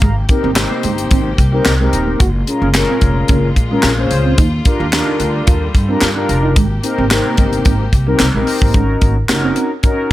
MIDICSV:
0, 0, Header, 1, 7, 480
1, 0, Start_track
1, 0, Tempo, 545455
1, 17, Time_signature, 4, 2, 24, 8
1, 8913, End_track
2, 0, Start_track
2, 0, Title_t, "Analog polysynth"
2, 0, Program_c, 0, 90
2, 0, Note_on_c, 0, 77, 53
2, 0, Note_on_c, 0, 82, 64
2, 134, Note_off_c, 0, 82, 0
2, 138, Note_off_c, 0, 77, 0
2, 255, Note_on_c, 0, 60, 84
2, 257, Note_on_c, 0, 63, 77
2, 259, Note_on_c, 0, 67, 77
2, 261, Note_on_c, 0, 70, 92
2, 443, Note_off_c, 0, 60, 0
2, 444, Note_off_c, 0, 63, 0
2, 445, Note_off_c, 0, 67, 0
2, 446, Note_off_c, 0, 70, 0
2, 496, Note_on_c, 0, 60, 87
2, 496, Note_on_c, 0, 63, 82
2, 498, Note_on_c, 0, 67, 76
2, 502, Note_on_c, 0, 72, 93
2, 1143, Note_off_c, 0, 60, 0
2, 1143, Note_off_c, 0, 63, 0
2, 1144, Note_off_c, 0, 67, 0
2, 1146, Note_off_c, 0, 72, 0
2, 1342, Note_on_c, 0, 60, 96
2, 1345, Note_on_c, 0, 63, 94
2, 1348, Note_on_c, 0, 67, 89
2, 1348, Note_on_c, 0, 70, 103
2, 1523, Note_off_c, 0, 60, 0
2, 1525, Note_off_c, 0, 63, 0
2, 1526, Note_off_c, 0, 67, 0
2, 1526, Note_off_c, 0, 70, 0
2, 1583, Note_on_c, 0, 60, 94
2, 1586, Note_on_c, 0, 63, 85
2, 1587, Note_on_c, 0, 67, 84
2, 1592, Note_on_c, 0, 70, 99
2, 1936, Note_off_c, 0, 60, 0
2, 1937, Note_off_c, 0, 63, 0
2, 1938, Note_off_c, 0, 67, 0
2, 1940, Note_off_c, 0, 70, 0
2, 2179, Note_on_c, 0, 61, 85
2, 2183, Note_on_c, 0, 65, 77
2, 2183, Note_on_c, 0, 68, 78
2, 2186, Note_on_c, 0, 70, 91
2, 2365, Note_off_c, 0, 61, 0
2, 2366, Note_off_c, 0, 65, 0
2, 2366, Note_off_c, 0, 68, 0
2, 2368, Note_off_c, 0, 70, 0
2, 2419, Note_on_c, 0, 61, 87
2, 2423, Note_on_c, 0, 65, 80
2, 2426, Note_on_c, 0, 68, 80
2, 2429, Note_on_c, 0, 70, 99
2, 3065, Note_off_c, 0, 61, 0
2, 3066, Note_off_c, 0, 65, 0
2, 3068, Note_off_c, 0, 68, 0
2, 3069, Note_off_c, 0, 70, 0
2, 3266, Note_on_c, 0, 61, 99
2, 3269, Note_on_c, 0, 65, 93
2, 3272, Note_on_c, 0, 68, 88
2, 3273, Note_on_c, 0, 70, 112
2, 3445, Note_off_c, 0, 61, 0
2, 3447, Note_off_c, 0, 65, 0
2, 3448, Note_off_c, 0, 68, 0
2, 3449, Note_off_c, 0, 70, 0
2, 3504, Note_on_c, 0, 61, 90
2, 3505, Note_on_c, 0, 65, 82
2, 3507, Note_on_c, 0, 68, 81
2, 3510, Note_on_c, 0, 72, 99
2, 3857, Note_off_c, 0, 61, 0
2, 3857, Note_off_c, 0, 65, 0
2, 3858, Note_off_c, 0, 68, 0
2, 3860, Note_off_c, 0, 72, 0
2, 4093, Note_on_c, 0, 62, 89
2, 4097, Note_on_c, 0, 65, 76
2, 4099, Note_on_c, 0, 67, 78
2, 4101, Note_on_c, 0, 70, 92
2, 4281, Note_off_c, 0, 62, 0
2, 4284, Note_off_c, 0, 65, 0
2, 4285, Note_off_c, 0, 67, 0
2, 4286, Note_off_c, 0, 70, 0
2, 4332, Note_on_c, 0, 62, 93
2, 4336, Note_on_c, 0, 65, 80
2, 4339, Note_on_c, 0, 66, 65
2, 4342, Note_on_c, 0, 70, 92
2, 4396, Note_on_c, 0, 67, 77
2, 4399, Note_off_c, 0, 66, 0
2, 4981, Note_off_c, 0, 62, 0
2, 4983, Note_off_c, 0, 65, 0
2, 4986, Note_off_c, 0, 70, 0
2, 5013, Note_off_c, 0, 67, 0
2, 5182, Note_on_c, 0, 65, 89
2, 5183, Note_on_c, 0, 62, 100
2, 5186, Note_on_c, 0, 67, 86
2, 5189, Note_on_c, 0, 70, 107
2, 5363, Note_off_c, 0, 65, 0
2, 5364, Note_off_c, 0, 62, 0
2, 5365, Note_off_c, 0, 67, 0
2, 5366, Note_off_c, 0, 70, 0
2, 5420, Note_on_c, 0, 62, 95
2, 5422, Note_on_c, 0, 65, 83
2, 5424, Note_on_c, 0, 67, 81
2, 5425, Note_on_c, 0, 70, 104
2, 5775, Note_off_c, 0, 62, 0
2, 5776, Note_off_c, 0, 65, 0
2, 5777, Note_off_c, 0, 67, 0
2, 5777, Note_off_c, 0, 70, 0
2, 6008, Note_on_c, 0, 60, 87
2, 6009, Note_on_c, 0, 63, 84
2, 6014, Note_on_c, 0, 67, 79
2, 6015, Note_on_c, 0, 70, 97
2, 6199, Note_off_c, 0, 60, 0
2, 6200, Note_off_c, 0, 63, 0
2, 6202, Note_off_c, 0, 67, 0
2, 6203, Note_off_c, 0, 70, 0
2, 6251, Note_on_c, 0, 60, 85
2, 6252, Note_on_c, 0, 63, 78
2, 6254, Note_on_c, 0, 67, 77
2, 6259, Note_on_c, 0, 70, 91
2, 6900, Note_off_c, 0, 60, 0
2, 6901, Note_off_c, 0, 63, 0
2, 6902, Note_off_c, 0, 67, 0
2, 6904, Note_off_c, 0, 70, 0
2, 7099, Note_on_c, 0, 60, 97
2, 7100, Note_on_c, 0, 63, 90
2, 7101, Note_on_c, 0, 67, 87
2, 7104, Note_on_c, 0, 70, 108
2, 7281, Note_off_c, 0, 60, 0
2, 7282, Note_off_c, 0, 63, 0
2, 7283, Note_off_c, 0, 67, 0
2, 7284, Note_off_c, 0, 70, 0
2, 7344, Note_on_c, 0, 58, 71
2, 7347, Note_on_c, 0, 63, 84
2, 7349, Note_on_c, 0, 67, 80
2, 7351, Note_on_c, 0, 70, 99
2, 7398, Note_off_c, 0, 58, 0
2, 7400, Note_on_c, 0, 60, 96
2, 7682, Note_off_c, 0, 63, 0
2, 7686, Note_off_c, 0, 70, 0
2, 7690, Note_on_c, 0, 61, 82
2, 7693, Note_on_c, 0, 63, 79
2, 7695, Note_on_c, 0, 66, 75
2, 7697, Note_on_c, 0, 70, 97
2, 7699, Note_off_c, 0, 67, 0
2, 7725, Note_off_c, 0, 60, 0
2, 8067, Note_off_c, 0, 61, 0
2, 8068, Note_off_c, 0, 63, 0
2, 8069, Note_off_c, 0, 66, 0
2, 8070, Note_off_c, 0, 70, 0
2, 8170, Note_on_c, 0, 61, 92
2, 8174, Note_on_c, 0, 63, 88
2, 8176, Note_on_c, 0, 66, 88
2, 8177, Note_on_c, 0, 70, 101
2, 8547, Note_off_c, 0, 61, 0
2, 8549, Note_off_c, 0, 63, 0
2, 8550, Note_off_c, 0, 66, 0
2, 8550, Note_off_c, 0, 70, 0
2, 8651, Note_on_c, 0, 61, 91
2, 8653, Note_on_c, 0, 63, 83
2, 8655, Note_on_c, 0, 66, 86
2, 8658, Note_on_c, 0, 70, 107
2, 8913, Note_off_c, 0, 61, 0
2, 8913, Note_off_c, 0, 63, 0
2, 8913, Note_off_c, 0, 66, 0
2, 8913, Note_off_c, 0, 70, 0
2, 8913, End_track
3, 0, Start_track
3, 0, Title_t, "Clean electric guitar"
3, 0, Program_c, 1, 27
3, 15, Note_on_c, 1, 56, 96
3, 85, Note_off_c, 1, 56, 0
3, 380, Note_on_c, 1, 60, 73
3, 443, Note_off_c, 1, 60, 0
3, 621, Note_on_c, 1, 58, 75
3, 684, Note_off_c, 1, 58, 0
3, 736, Note_on_c, 1, 56, 76
3, 807, Note_off_c, 1, 56, 0
3, 977, Note_on_c, 1, 60, 94
3, 1047, Note_off_c, 1, 60, 0
3, 1341, Note_on_c, 1, 55, 77
3, 1404, Note_off_c, 1, 55, 0
3, 1583, Note_on_c, 1, 56, 84
3, 1646, Note_off_c, 1, 56, 0
3, 1824, Note_on_c, 1, 58, 77
3, 1886, Note_off_c, 1, 58, 0
3, 1933, Note_on_c, 1, 66, 96
3, 2004, Note_off_c, 1, 66, 0
3, 2305, Note_on_c, 1, 61, 73
3, 2367, Note_off_c, 1, 61, 0
3, 2545, Note_on_c, 1, 60, 75
3, 2607, Note_off_c, 1, 60, 0
3, 2660, Note_on_c, 1, 58, 77
3, 2729, Note_off_c, 1, 58, 0
3, 2898, Note_on_c, 1, 61, 90
3, 2968, Note_off_c, 1, 61, 0
3, 3265, Note_on_c, 1, 56, 77
3, 3327, Note_off_c, 1, 56, 0
3, 3503, Note_on_c, 1, 58, 85
3, 3566, Note_off_c, 1, 58, 0
3, 3740, Note_on_c, 1, 60, 75
3, 3803, Note_off_c, 1, 60, 0
3, 3852, Note_on_c, 1, 63, 91
3, 3923, Note_off_c, 1, 63, 0
3, 4220, Note_on_c, 1, 65, 73
3, 4283, Note_off_c, 1, 65, 0
3, 4456, Note_on_c, 1, 63, 80
3, 4521, Note_off_c, 1, 63, 0
3, 4570, Note_on_c, 1, 62, 82
3, 4642, Note_off_c, 1, 62, 0
3, 4812, Note_on_c, 1, 65, 94
3, 4883, Note_off_c, 1, 65, 0
3, 5178, Note_on_c, 1, 60, 82
3, 5242, Note_off_c, 1, 60, 0
3, 5419, Note_on_c, 1, 62, 80
3, 5482, Note_off_c, 1, 62, 0
3, 5658, Note_on_c, 1, 63, 74
3, 5722, Note_off_c, 1, 63, 0
3, 5770, Note_on_c, 1, 56, 97
3, 5842, Note_off_c, 1, 56, 0
3, 6140, Note_on_c, 1, 60, 76
3, 6203, Note_off_c, 1, 60, 0
3, 6378, Note_on_c, 1, 58, 75
3, 6442, Note_off_c, 1, 58, 0
3, 6488, Note_on_c, 1, 56, 76
3, 6561, Note_off_c, 1, 56, 0
3, 6731, Note_on_c, 1, 60, 91
3, 6803, Note_off_c, 1, 60, 0
3, 7100, Note_on_c, 1, 55, 79
3, 7163, Note_off_c, 1, 55, 0
3, 7341, Note_on_c, 1, 56, 78
3, 7404, Note_off_c, 1, 56, 0
3, 7581, Note_on_c, 1, 58, 78
3, 7644, Note_off_c, 1, 58, 0
3, 7692, Note_on_c, 1, 56, 79
3, 7763, Note_off_c, 1, 56, 0
3, 7933, Note_on_c, 1, 58, 75
3, 8004, Note_off_c, 1, 58, 0
3, 8299, Note_on_c, 1, 60, 74
3, 8363, Note_off_c, 1, 60, 0
3, 8407, Note_on_c, 1, 60, 85
3, 8480, Note_off_c, 1, 60, 0
3, 8651, Note_on_c, 1, 61, 84
3, 8723, Note_off_c, 1, 61, 0
3, 8913, End_track
4, 0, Start_track
4, 0, Title_t, "String section"
4, 0, Program_c, 2, 48
4, 18, Note_on_c, 2, 48, 72
4, 18, Note_on_c, 2, 58, 68
4, 20, Note_on_c, 2, 67, 83
4, 1918, Note_off_c, 2, 48, 0
4, 1918, Note_off_c, 2, 58, 0
4, 1919, Note_off_c, 2, 67, 0
4, 1938, Note_on_c, 2, 46, 77
4, 1938, Note_on_c, 2, 65, 86
4, 1939, Note_on_c, 2, 56, 68
4, 3838, Note_off_c, 2, 46, 0
4, 3839, Note_off_c, 2, 56, 0
4, 3852, Note_on_c, 2, 55, 72
4, 3855, Note_on_c, 2, 50, 82
4, 5742, Note_off_c, 2, 65, 0
4, 5755, Note_off_c, 2, 55, 0
4, 5757, Note_off_c, 2, 50, 0
4, 5774, Note_on_c, 2, 48, 80
4, 5775, Note_on_c, 2, 67, 86
4, 5777, Note_on_c, 2, 58, 73
4, 7676, Note_off_c, 2, 48, 0
4, 7677, Note_off_c, 2, 67, 0
4, 7678, Note_off_c, 2, 58, 0
4, 8913, End_track
5, 0, Start_track
5, 0, Title_t, "Upright bass"
5, 0, Program_c, 3, 32
5, 18, Note_on_c, 3, 32, 111
5, 197, Note_off_c, 3, 32, 0
5, 386, Note_on_c, 3, 32, 101
5, 564, Note_off_c, 3, 32, 0
5, 737, Note_on_c, 3, 31, 87
5, 916, Note_off_c, 3, 31, 0
5, 979, Note_on_c, 3, 32, 104
5, 1157, Note_off_c, 3, 32, 0
5, 1218, Note_on_c, 3, 36, 91
5, 1397, Note_off_c, 3, 36, 0
5, 1458, Note_on_c, 3, 36, 101
5, 1637, Note_off_c, 3, 36, 0
5, 1699, Note_on_c, 3, 27, 91
5, 1878, Note_off_c, 3, 27, 0
5, 1939, Note_on_c, 3, 30, 110
5, 2117, Note_off_c, 3, 30, 0
5, 2303, Note_on_c, 3, 30, 104
5, 2482, Note_off_c, 3, 30, 0
5, 2656, Note_on_c, 3, 29, 95
5, 2835, Note_off_c, 3, 29, 0
5, 2897, Note_on_c, 3, 30, 100
5, 3076, Note_off_c, 3, 30, 0
5, 3135, Note_on_c, 3, 34, 89
5, 3315, Note_off_c, 3, 34, 0
5, 3378, Note_on_c, 3, 34, 112
5, 3557, Note_off_c, 3, 34, 0
5, 3618, Note_on_c, 3, 37, 98
5, 3797, Note_off_c, 3, 37, 0
5, 3857, Note_on_c, 3, 39, 113
5, 4036, Note_off_c, 3, 39, 0
5, 4225, Note_on_c, 3, 39, 101
5, 4404, Note_off_c, 3, 39, 0
5, 4575, Note_on_c, 3, 38, 95
5, 4755, Note_off_c, 3, 38, 0
5, 4819, Note_on_c, 3, 39, 101
5, 4998, Note_off_c, 3, 39, 0
5, 5057, Note_on_c, 3, 43, 97
5, 5236, Note_off_c, 3, 43, 0
5, 5296, Note_on_c, 3, 43, 100
5, 5476, Note_off_c, 3, 43, 0
5, 5536, Note_on_c, 3, 29, 93
5, 5776, Note_off_c, 3, 29, 0
5, 5776, Note_on_c, 3, 32, 97
5, 5955, Note_off_c, 3, 32, 0
5, 6145, Note_on_c, 3, 32, 98
5, 6324, Note_off_c, 3, 32, 0
5, 6496, Note_on_c, 3, 31, 99
5, 6675, Note_off_c, 3, 31, 0
5, 6739, Note_on_c, 3, 32, 96
5, 6917, Note_off_c, 3, 32, 0
5, 6977, Note_on_c, 3, 36, 86
5, 7156, Note_off_c, 3, 36, 0
5, 7220, Note_on_c, 3, 36, 96
5, 7314, Note_off_c, 3, 36, 0
5, 7344, Note_on_c, 3, 34, 82
5, 7428, Note_off_c, 3, 34, 0
5, 7584, Note_on_c, 3, 32, 93
5, 7668, Note_off_c, 3, 32, 0
5, 7694, Note_on_c, 3, 32, 95
5, 7874, Note_off_c, 3, 32, 0
5, 7936, Note_on_c, 3, 32, 101
5, 8115, Note_off_c, 3, 32, 0
5, 8176, Note_on_c, 3, 30, 91
5, 8356, Note_off_c, 3, 30, 0
5, 8913, End_track
6, 0, Start_track
6, 0, Title_t, "Muted clean electric guitar strokes"
6, 255, Note_on_c, 9, 29, 44
6, 343, Note_off_c, 9, 29, 0
6, 494, Note_on_c, 9, 29, 47
6, 582, Note_off_c, 9, 29, 0
6, 1215, Note_on_c, 9, 29, 49
6, 1303, Note_off_c, 9, 29, 0
6, 1698, Note_on_c, 9, 29, 45
6, 1786, Note_off_c, 9, 29, 0
6, 2179, Note_on_c, 9, 29, 45
6, 2267, Note_off_c, 9, 29, 0
6, 3139, Note_on_c, 9, 29, 47
6, 3227, Note_off_c, 9, 29, 0
6, 3617, Note_on_c, 9, 29, 45
6, 3705, Note_off_c, 9, 29, 0
6, 4094, Note_on_c, 9, 29, 46
6, 4182, Note_off_c, 9, 29, 0
6, 4333, Note_on_c, 9, 29, 49
6, 4421, Note_off_c, 9, 29, 0
6, 5052, Note_on_c, 9, 29, 51
6, 5140, Note_off_c, 9, 29, 0
6, 5533, Note_on_c, 9, 29, 46
6, 5621, Note_off_c, 9, 29, 0
6, 6010, Note_on_c, 9, 29, 47
6, 6098, Note_off_c, 9, 29, 0
6, 6972, Note_on_c, 9, 29, 47
6, 7060, Note_off_c, 9, 29, 0
6, 8059, Note_on_c, 9, 29, 42
6, 8147, Note_off_c, 9, 29, 0
6, 8173, Note_on_c, 9, 29, 44
6, 8261, Note_off_c, 9, 29, 0
6, 8913, End_track
7, 0, Start_track
7, 0, Title_t, "Drums"
7, 15, Note_on_c, 9, 42, 103
7, 16, Note_on_c, 9, 36, 127
7, 103, Note_off_c, 9, 42, 0
7, 104, Note_off_c, 9, 36, 0
7, 253, Note_on_c, 9, 42, 75
7, 257, Note_on_c, 9, 36, 103
7, 341, Note_off_c, 9, 42, 0
7, 345, Note_off_c, 9, 36, 0
7, 493, Note_on_c, 9, 39, 102
7, 493, Note_on_c, 9, 42, 100
7, 495, Note_on_c, 9, 38, 118
7, 581, Note_off_c, 9, 39, 0
7, 581, Note_off_c, 9, 42, 0
7, 583, Note_off_c, 9, 38, 0
7, 733, Note_on_c, 9, 42, 76
7, 821, Note_off_c, 9, 42, 0
7, 863, Note_on_c, 9, 42, 50
7, 951, Note_off_c, 9, 42, 0
7, 974, Note_on_c, 9, 42, 89
7, 979, Note_on_c, 9, 36, 108
7, 1062, Note_off_c, 9, 42, 0
7, 1067, Note_off_c, 9, 36, 0
7, 1218, Note_on_c, 9, 36, 85
7, 1223, Note_on_c, 9, 42, 73
7, 1306, Note_off_c, 9, 36, 0
7, 1311, Note_off_c, 9, 42, 0
7, 1455, Note_on_c, 9, 39, 98
7, 1457, Note_on_c, 9, 38, 124
7, 1461, Note_on_c, 9, 42, 82
7, 1543, Note_off_c, 9, 39, 0
7, 1545, Note_off_c, 9, 38, 0
7, 1549, Note_off_c, 9, 42, 0
7, 1698, Note_on_c, 9, 42, 82
7, 1786, Note_off_c, 9, 42, 0
7, 1936, Note_on_c, 9, 42, 102
7, 1938, Note_on_c, 9, 36, 124
7, 2024, Note_off_c, 9, 42, 0
7, 2026, Note_off_c, 9, 36, 0
7, 2177, Note_on_c, 9, 42, 75
7, 2265, Note_off_c, 9, 42, 0
7, 2414, Note_on_c, 9, 42, 103
7, 2415, Note_on_c, 9, 39, 105
7, 2417, Note_on_c, 9, 38, 127
7, 2502, Note_off_c, 9, 42, 0
7, 2503, Note_off_c, 9, 39, 0
7, 2505, Note_off_c, 9, 38, 0
7, 2651, Note_on_c, 9, 42, 74
7, 2656, Note_on_c, 9, 36, 82
7, 2739, Note_off_c, 9, 42, 0
7, 2744, Note_off_c, 9, 36, 0
7, 2888, Note_on_c, 9, 42, 85
7, 2897, Note_on_c, 9, 36, 108
7, 2976, Note_off_c, 9, 42, 0
7, 2985, Note_off_c, 9, 36, 0
7, 3136, Note_on_c, 9, 36, 83
7, 3137, Note_on_c, 9, 42, 76
7, 3224, Note_off_c, 9, 36, 0
7, 3225, Note_off_c, 9, 42, 0
7, 3368, Note_on_c, 9, 39, 94
7, 3370, Note_on_c, 9, 38, 127
7, 3374, Note_on_c, 9, 42, 82
7, 3456, Note_off_c, 9, 39, 0
7, 3458, Note_off_c, 9, 38, 0
7, 3462, Note_off_c, 9, 42, 0
7, 3614, Note_on_c, 9, 42, 79
7, 3702, Note_off_c, 9, 42, 0
7, 3854, Note_on_c, 9, 42, 103
7, 3856, Note_on_c, 9, 36, 127
7, 3942, Note_off_c, 9, 42, 0
7, 3944, Note_off_c, 9, 36, 0
7, 4094, Note_on_c, 9, 42, 79
7, 4097, Note_on_c, 9, 36, 106
7, 4182, Note_off_c, 9, 42, 0
7, 4185, Note_off_c, 9, 36, 0
7, 4337, Note_on_c, 9, 39, 103
7, 4337, Note_on_c, 9, 42, 103
7, 4339, Note_on_c, 9, 38, 122
7, 4425, Note_off_c, 9, 39, 0
7, 4425, Note_off_c, 9, 42, 0
7, 4427, Note_off_c, 9, 38, 0
7, 4574, Note_on_c, 9, 42, 74
7, 4662, Note_off_c, 9, 42, 0
7, 4814, Note_on_c, 9, 42, 83
7, 4819, Note_on_c, 9, 36, 113
7, 4902, Note_off_c, 9, 42, 0
7, 4907, Note_off_c, 9, 36, 0
7, 5056, Note_on_c, 9, 36, 88
7, 5061, Note_on_c, 9, 42, 74
7, 5144, Note_off_c, 9, 36, 0
7, 5149, Note_off_c, 9, 42, 0
7, 5291, Note_on_c, 9, 39, 103
7, 5293, Note_on_c, 9, 38, 127
7, 5297, Note_on_c, 9, 42, 84
7, 5379, Note_off_c, 9, 39, 0
7, 5381, Note_off_c, 9, 38, 0
7, 5385, Note_off_c, 9, 42, 0
7, 5537, Note_on_c, 9, 42, 83
7, 5625, Note_off_c, 9, 42, 0
7, 5774, Note_on_c, 9, 42, 102
7, 5776, Note_on_c, 9, 36, 127
7, 5862, Note_off_c, 9, 42, 0
7, 5864, Note_off_c, 9, 36, 0
7, 6015, Note_on_c, 9, 42, 80
7, 6103, Note_off_c, 9, 42, 0
7, 6255, Note_on_c, 9, 39, 103
7, 6255, Note_on_c, 9, 42, 106
7, 6257, Note_on_c, 9, 38, 127
7, 6343, Note_off_c, 9, 39, 0
7, 6343, Note_off_c, 9, 42, 0
7, 6345, Note_off_c, 9, 38, 0
7, 6489, Note_on_c, 9, 42, 73
7, 6495, Note_on_c, 9, 36, 90
7, 6577, Note_off_c, 9, 42, 0
7, 6583, Note_off_c, 9, 36, 0
7, 6624, Note_on_c, 9, 42, 50
7, 6712, Note_off_c, 9, 42, 0
7, 6732, Note_on_c, 9, 42, 85
7, 6738, Note_on_c, 9, 36, 117
7, 6820, Note_off_c, 9, 42, 0
7, 6826, Note_off_c, 9, 36, 0
7, 6976, Note_on_c, 9, 36, 88
7, 6979, Note_on_c, 9, 42, 77
7, 7064, Note_off_c, 9, 36, 0
7, 7067, Note_off_c, 9, 42, 0
7, 7211, Note_on_c, 9, 39, 102
7, 7213, Note_on_c, 9, 38, 122
7, 7217, Note_on_c, 9, 42, 85
7, 7299, Note_off_c, 9, 39, 0
7, 7301, Note_off_c, 9, 38, 0
7, 7305, Note_off_c, 9, 42, 0
7, 7454, Note_on_c, 9, 46, 80
7, 7542, Note_off_c, 9, 46, 0
7, 7583, Note_on_c, 9, 36, 101
7, 7671, Note_off_c, 9, 36, 0
7, 7693, Note_on_c, 9, 42, 98
7, 7694, Note_on_c, 9, 36, 118
7, 7781, Note_off_c, 9, 42, 0
7, 7782, Note_off_c, 9, 36, 0
7, 7933, Note_on_c, 9, 42, 79
7, 7935, Note_on_c, 9, 36, 98
7, 8021, Note_off_c, 9, 42, 0
7, 8023, Note_off_c, 9, 36, 0
7, 8175, Note_on_c, 9, 42, 102
7, 8176, Note_on_c, 9, 39, 97
7, 8178, Note_on_c, 9, 38, 124
7, 8263, Note_off_c, 9, 42, 0
7, 8264, Note_off_c, 9, 39, 0
7, 8266, Note_off_c, 9, 38, 0
7, 8412, Note_on_c, 9, 42, 73
7, 8500, Note_off_c, 9, 42, 0
7, 8651, Note_on_c, 9, 42, 82
7, 8656, Note_on_c, 9, 36, 109
7, 8739, Note_off_c, 9, 42, 0
7, 8744, Note_off_c, 9, 36, 0
7, 8913, End_track
0, 0, End_of_file